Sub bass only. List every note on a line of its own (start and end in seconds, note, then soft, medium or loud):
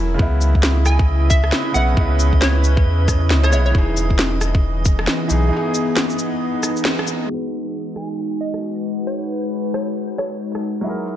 0.00 0.17 E1 medium
0.19 1.51 C#2 loud
1.75 1.96 B1 medium
1.97 2.85 C#2 loud
2.86 3.32 E2 medium
3.30 3.54 C#2 loud
3.53 3.73 B1 loud
3.75 5.07 E1 loud
5.31 5.51 B1 medium